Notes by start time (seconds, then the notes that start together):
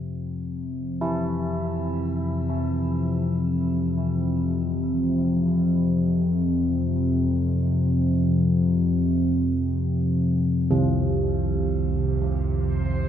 Already playing: F2 C3
1.01 E4
10.71 C3
11.96 F2 C3
12.72 C5